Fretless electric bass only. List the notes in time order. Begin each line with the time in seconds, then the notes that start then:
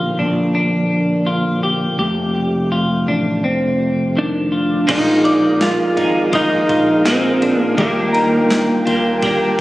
Already playing: A#1
0.19 A#1
1.99 F1
3.08 A1
3.44 F1
4.89 A#1
5.97 G#1
6.69 A#1
7.78 D#2
8.87 D#2